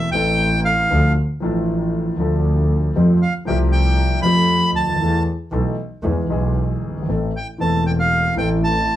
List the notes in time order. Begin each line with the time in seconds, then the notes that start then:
Already playing: C4 A4
0.12 A1 A2 E3 A3 C4 G5
0.16 A4
0.65 F5
0.90 D2 D3 F3 A3 D4 A4
1.40 A1 A2 F3 A3 D4 A4
2.17 D2 D3 F3 A3 D4
2.21 A4
2.96 F2 F3 A3 C4 G4
3.22 F5
3.45 C2 C3 F3 A3 C4 G5
3.50 G4
3.72 G5
4.22 F2 F3 A3 C4 B5
4.26 G4
4.75 D2 A5
4.82 C#2
4.89 D2
4.94 D#2
5.00 E2 E3 A3 B3 A4
5.52 B1 B2 E3 A3 B3 A4
6.03 E2 E3 G#3 B3 G#4
6.28 B1 B2 E3 G#3 B3 G#4
6.82 G1
6.90 F#1
6.96 G1
7.03 G#1
7.08 A1 A2 E3 A3 C4 A4
7.36 G5
7.58 E1 E2 E3 A3 C4 A4 A5
7.86 G5
8.00 F5
8.35 A1 A2 E3 A3 C4 A4 G5
8.64 A5